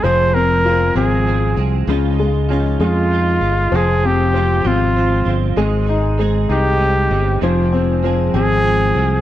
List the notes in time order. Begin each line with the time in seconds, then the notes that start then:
0.03 F1 F2 C3 F3 G#3 C4 G#4 C5
0.33 F3 G#3 C4 G#4 A#4
0.64 F3 G#3 C4 F4 G#4
0.95 G#1 F2 C3 F3 G#3 C4 G#4
1.26 F3 G#3 C4 G#4
1.57 C2 F3 G#3 C4 G#4
1.87 C#2 C#3 F3 G#3 D#4 F4
2.18 G#3 D#4 F4
2.49 F3 G#3 C#4 D#4 F4
2.80 F2 C#3 F3 G#3 D#4 F4
2.84 F4
3.10 F3 G#3 D#4 F4
3.41 G1 G#3 D#4 F4
3.72 F1 F2 C3 F3 G#3 C4 F4
3.76 G#4
4.03 F3 G#3 C4 F4 G4
4.34 F3 G#3 C4 F4
4.64 G#1 F2 C3 F3 G#3 C4 F4
4.95 F3 G#3 C4 F4
5.25 G1 F3 G#3 C4 F4
5.56 G#1 G#2 D#3 G#3 C4 D#4 G#4
5.87 G#3 C4 D#4 G#4
6.18 G#3 C4 D#4 G#4
6.49 C2 G#2 D#3 G#3 C4 D#4 G4
6.79 G#3 C4 D#4
7.11 G1 G#3 C4 D#4
7.41 F1 F2 C3 F3 G#3 C4 G#4
7.72 F3 G#3 C4 G#4
8.03 F3 G#3 C4 G#4
8.34 G#1 F2 C3 F3 G#3 C4 G#4
8.64 F3 G#3 C4 G#4
8.95 C2 F3 G#3 C4 G#4